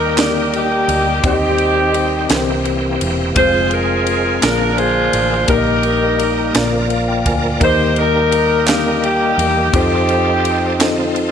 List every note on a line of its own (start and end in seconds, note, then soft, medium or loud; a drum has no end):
0.00 0.84 D#2 loud
0.00 0.13 D#3 medium
0.00 1.20 G3 medium
0.00 0.17 A#3 medium
0.00 1.20 A#3 medium
0.00 0.17 D#4 medium
0.00 0.50 D#4 medium
0.00 1.20 D#4 medium
0.00 0.18 G4 medium
0.00 0.50 G4 medium
0.00 1.20 G4 medium
0.00 0.19 A#4 medium
0.00 1.25 D#5 medium
0.17 0.86 A#3 medium
0.17 0.86 D#4 medium
0.17 0.87 G4 medium
0.17 0.87 A#4 medium
0.17 0.87 D5 medium
0.17 snare loud
0.17 clap medium
0.17 ride medium
0.21 0.52 A#4 medium
0.53 1.21 A#3 medium
0.53 1.21 D#4 medium
0.53 1.25 G4 medium
0.53 ride soft
0.88 1.21 D2 medium
0.88 ride medium
1.22 2.26 D#2 loud
1.22 2.30 D#3 medium
1.22 2.27 D#3 medium
1.22 2.30 G3 medium
1.22 2.28 C4 medium
1.22 1.93 C4 medium
1.22 2.63 C4 medium
1.22 1.93 D#4 medium
1.22 1.30 F4 medium
1.22 1.93 G4 medium
1.22 1.94 C5 medium
1.22 kick loud
1.22 ride medium
1.26 2.63 D#4 medium
1.26 2.63 G4 medium
1.26 2.28 G4 medium
1.26 1.32 D5 medium
1.33 1.97 D#5 medium
1.58 ride soft
1.94 ride medium
2.28 2.97 C2 loud
2.28 3.33 C3 medium
2.28 3.36 E3 medium
2.28 2.99 E3 medium
2.28 3.36 A#3 medium
2.28 3.34 C4 medium
2.28 2.99 C4 medium
2.28 3.36 G4 medium
2.28 3.00 G4 medium
2.28 3.00 A#4 medium
2.28 snare loud
2.28 clap loud
2.28 ride medium
2.33 3.00 C5 medium
2.65 ride soft
3.01 3.34 E1 medium
3.01 ride medium
3.35 4.39 F1 loud
3.35 4.41 F3 medium
3.35 4.05 G#3 medium
3.35 4.42 G#3 medium
3.35 4.42 C4 medium
3.35 4.05 C4 medium
3.35 4.06 F4 medium
3.35 3.73 F4 medium
3.35 4.41 G#4 medium
3.35 4.06 G#4 medium
3.35 4.40 G#4 medium
3.35 3.70 C5 loud
3.35 4.06 C5 medium
3.35 kick loud
3.35 ride medium
3.71 4.40 F4 medium
3.71 4.42 A#4 loud
3.71 ride soft
4.07 ride medium
4.41 5.10 A#1 medium
4.41 5.45 D3 medium
4.41 5.49 F3 medium
4.41 5.47 A#3 medium
4.41 5.11 A#3 medium
4.41 5.49 D4 medium
4.41 5.11 D4 medium
4.41 5.46 D4 medium
4.41 5.12 F4 medium
4.41 4.78 F4 medium
4.41 5.48 G#4 medium
4.41 5.12 G#4 medium
4.41 4.76 A#4 medium
4.41 5.13 A#4 medium
4.41 snare loud
4.41 clap medium
4.41 ride medium
4.77 5.46 F4 medium
4.77 5.45 G#4 medium
4.77 5.49 C5 loud
4.77 ride soft
5.13 5.46 A1 medium
5.13 ride medium
5.48 6.51 A#1 loud
5.48 6.52 A#2 medium
5.48 6.55 G3 medium
5.48 6.17 A#3 medium
5.48 6.53 A#3 medium
5.48 6.18 D#4 medium
5.48 6.55 D#4 medium
5.48 6.88 D#4 medium
5.48 6.18 G4 medium
5.48 6.88 G4 medium
5.48 5.55 G#4 medium
5.48 6.91 A#4 medium
5.48 6.19 A#4 medium
5.48 5.56 D5 medium
5.48 kick loud
5.48 ride medium
5.55 6.54 A#4 medium
5.55 6.22 D#5 medium
5.83 ride soft
6.19 ride medium
6.53 7.22 A#1 loud
6.53 7.57 A#2 medium
6.53 7.62 F3 medium
6.53 7.23 A#3 medium
6.53 7.59 A#3 medium
6.53 7.24 F4 medium
6.53 7.59 A#4 medium
6.53 7.24 A#4 medium
6.53 7.61 D5 medium
6.53 7.24 D5 medium
6.53 snare loud
6.53 clap medium
6.53 ride medium
6.90 7.07 F5 medium
6.90 ride soft
7.08 7.25 G5 medium
7.26 7.59 D2 medium
7.26 7.59 G#5 medium
7.26 kick loud
7.26 ride medium
7.60 9.34 D#2 loud
7.60 8.64 D#3 medium
7.60 9.69 G3 medium
7.60 8.29 A#3 medium
7.60 9.69 A#3 medium
7.60 9.69 D#4 medium
7.60 8.30 D#4 medium
7.60 7.99 D#4 medium
7.60 8.30 G4 medium
7.60 7.98 G4 medium
7.60 9.69 A#4 medium
7.60 8.31 A#4 medium
7.60 7.95 C5 loud
7.60 8.31 D#5 medium
7.60 kick loud
7.60 ride medium
7.96 9.01 D#4 medium
7.96 9.00 G4 medium
7.96 8.67 A#4 loud
7.96 ride soft
8.32 ride medium
8.67 9.36 A#3 medium
8.67 9.36 D#4 medium
8.67 9.37 G4 medium
8.67 9.01 A#4 medium
8.67 9.37 A#4 medium
8.67 9.37 F5 medium
8.67 snare loud
8.67 clap loud
8.67 ride medium
9.04 9.71 A#3 medium
9.04 9.71 D#4 medium
9.04 9.74 G4 loud
9.04 ride soft
9.38 9.71 E2 medium
9.38 ride medium
9.73 11.31 F2 loud
9.73 11.31 F3 medium
9.73 10.42 C4 medium
9.73 11.31 C4 medium
9.73 10.42 D#4 medium
9.73 11.31 D#4 medium
9.73 10.43 F4 medium
9.73 9.80 G4 medium
9.73 11.12 G4 loud
9.73 10.43 A4 medium
9.73 10.44 C5 medium
9.73 kick loud
9.73 ride medium
9.77 11.13 C4 medium
9.77 11.13 D#4 medium
9.77 11.31 A4 medium
10.09 ride soft
10.45 ride medium
10.79 11.31 C4 medium
10.79 11.31 D#4 medium
10.79 11.31 F4 medium
10.79 11.31 A4 medium
10.79 11.31 D#5 medium
10.79 snare loud
10.79 clap medium
10.79 ride medium
11.16 ride soft